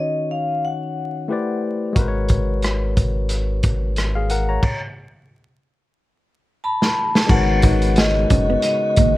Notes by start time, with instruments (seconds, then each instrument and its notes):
Already playing: tine electric piano D#3 C#4 D#4 F#4 C#5, vibraphone D#5
0.31 vibraphone F5
0.65 vibraphone F#5
1.28 tine electric piano A3 E4 G4 B4 C5
1.33 tine electric piano D5
1.93 analog synth bass G#1, tine electric piano G#3 F#4, kick, closed hi-hat
1.97 tine electric piano A#4 B4
2.02 tine electric piano C5
2.08 tine electric piano C#5
2.29 kick, closed hi-hat
2.62 cross-stick, closed hi-hat
2.97 kick, closed hi-hat
3.29 closed hi-hat
3.63 kick, closed hi-hat
3.96 cross-stick, closed hi-hat
4.15 tine electric piano G#4 F5
4.30 tine electric piano A#4 F#5, closed hi-hat
4.49 tine electric piano C#5 A#5
4.63 kick, crash
6.64 vibraphone A5 B5
6.82 snare
7.15 vibraphone A5, snare
7.26 analog synth bass G#1, tonewheel organ C#3 G#3 B3 F#4, tine electric piano G#3 D#4 F#4, kick, crash
7.31 tine electric piano A#4 B4, vibraphone F#5
7.35 tine electric piano C#5
7.62 hollow-body jazz guitar D#4, kick, closed hi-hat
7.82 closed hi-hat
7.96 vibraphone D#5, muted hollow-body jazz guitar stroke, snare, closed hi-hat
8.30 analog synth bass F#1, hollow-body jazz guitar C#4, kick, closed hi-hat
8.50 hollow-body jazz guitar B3
8.62 vibraphone D#5, muted hollow-body jazz guitar stroke, closed hi-hat
8.96 analog synth bass G#1, hollow-body jazz guitar A#3, kick, closed hi-hat